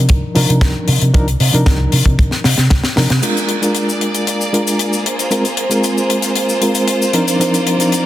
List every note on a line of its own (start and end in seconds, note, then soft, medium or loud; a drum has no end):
0.00 0.32 F3 medium
0.00 0.33 D4 medium
0.00 0.33 D#4 medium
0.00 0.33 A#4 medium
0.09 0.19 C2 medium
0.09 kick loud
0.09 closed hi-hat medium
0.34 0.45 C3 medium
0.34 1.10 F3 medium
0.34 1.11 D4 medium
0.34 1.11 D#4 medium
0.34 1.11 A#4 medium
0.34 open hi-hat loud
0.50 0.58 C3 medium
0.50 closed hi-hat medium
0.61 0.71 C2 loud
0.61 kick loud
0.61 snare loud
0.61 closed hi-hat medium
0.88 0.98 C3 medium
0.88 open hi-hat medium
1.02 1.10 C3 medium
1.02 closed hi-hat medium
1.13 1.33 C2 loud
1.13 1.26 F3 loud
1.13 1.26 D4 medium
1.13 1.27 D#4 medium
1.13 1.27 A#4 loud
1.13 kick loud
1.13 closed hi-hat loud
1.28 closed hi-hat medium
1.40 1.50 C3 medium
1.40 open hi-hat loud
1.53 1.63 C3 medium
1.53 2.41 F3 medium
1.53 2.41 D4 medium
1.53 2.42 D#4 medium
1.53 2.42 A#4 loud
1.53 closed hi-hat medium
1.66 1.85 C2 medium
1.66 kick loud
1.66 snare loud
1.66 closed hi-hat medium
1.92 2.02 C3 medium
1.92 open hi-hat medium
2.05 2.15 C3 medium
2.05 kick medium
2.05 closed hi-hat medium
2.19 2.28 C2 medium
2.19 kick loud
2.19 closed hi-hat medium
2.31 snare soft
2.44 2.54 C3 medium
2.44 snare medium
2.44 open hi-hat loud
2.58 2.67 C3 medium
2.58 snare medium
2.58 closed hi-hat medium
2.70 2.80 C2 loud
2.70 kick loud
2.70 snare medium
2.70 closed hi-hat medium
2.83 snare medium
2.83 closed hi-hat soft
2.96 3.07 C3 medium
2.96 3.09 F3 medium
2.96 3.09 D4 medium
2.96 3.09 D#4 medium
2.96 3.09 A#4 medium
2.96 snare medium
2.96 open hi-hat medium
3.10 3.19 C3 medium
3.10 snare medium
3.10 closed hi-hat medium
3.22 3.59 G#3 medium
3.22 7.10 A#3 medium
3.22 3.59 D4 medium
3.22 3.59 F4 medium
3.22 7.10 G#4 medium
3.22 3.59 A#4 medium
3.22 5.04 D5 medium
3.22 closed hi-hat medium
3.22 crash medium
3.22 cabasa medium
3.37 closed hi-hat soft
3.37 cabasa soft
3.49 closed hi-hat medium
3.61 4.50 G#3 medium
3.61 4.50 D4 medium
3.61 4.50 F4 medium
3.61 4.51 A#4 medium
3.61 closed hi-hat medium
3.61 cabasa medium
3.75 closed hi-hat medium
3.75 cabasa medium
3.89 cabasa soft
4.01 closed hi-hat medium
4.14 closed hi-hat medium
4.14 cabasa medium
4.27 closed hi-hat medium
4.27 cabasa medium
4.41 cabasa soft
4.53 5.04 G#3 medium
4.53 5.04 D4 medium
4.53 5.04 F4 medium
4.53 5.04 A#4 medium
4.53 closed hi-hat medium
4.68 closed hi-hat medium
4.68 cabasa medium
4.79 closed hi-hat medium
4.79 cabasa medium
4.93 cabasa soft
5.05 8.06 F4 medium
5.05 8.06 C5 medium
5.05 closed hi-hat medium
5.19 closed hi-hat medium
5.19 cabasa medium
5.31 5.44 G#3 medium
5.31 5.44 C4 medium
5.31 5.44 F4 medium
5.31 5.44 A#4 loud
5.31 closed hi-hat medium
5.31 cabasa medium
5.45 closed hi-hat soft
5.45 cabasa soft
5.57 closed hi-hat medium
5.70 6.58 G#3 medium
5.70 6.58 C4 medium
5.70 6.59 F4 medium
5.70 6.59 A#4 medium
5.70 closed hi-hat medium
5.70 cabasa medium
5.84 closed hi-hat medium
5.84 cabasa medium
5.98 cabasa soft
6.10 closed hi-hat medium
6.22 closed hi-hat medium
6.22 cabasa medium
6.36 closed hi-hat medium
6.36 cabasa medium
6.49 cabasa soft
6.61 7.11 G#3 medium
6.61 7.11 C4 medium
6.61 7.11 F4 medium
6.61 7.11 A#4 medium
6.61 closed hi-hat medium
6.75 closed hi-hat medium
6.75 cabasa medium
6.88 closed hi-hat medium
6.88 cabasa medium
7.02 cabasa soft
7.13 7.37 F3 medium
7.13 8.06 A#3 medium
7.13 7.37 C4 medium
7.13 7.37 D4 medium
7.13 7.37 D#4 medium
7.13 7.37 A#4 medium
7.13 8.06 D5 medium
7.13 closed hi-hat medium
7.28 closed hi-hat medium
7.28 cabasa medium
7.39 7.76 F3 medium
7.39 7.76 C4 medium
7.39 7.76 D4 medium
7.39 7.77 D#4 medium
7.39 7.77 A#4 medium
7.39 closed hi-hat medium
7.39 cabasa medium
7.54 closed hi-hat soft
7.54 cabasa soft
7.67 closed hi-hat medium
7.78 8.06 F3 medium
7.78 8.06 C4 medium
7.78 8.06 D4 medium
7.78 8.06 D#4 medium
7.78 8.06 A#4 medium
7.78 closed hi-hat medium
7.78 cabasa medium
7.92 closed hi-hat medium
7.92 cabasa medium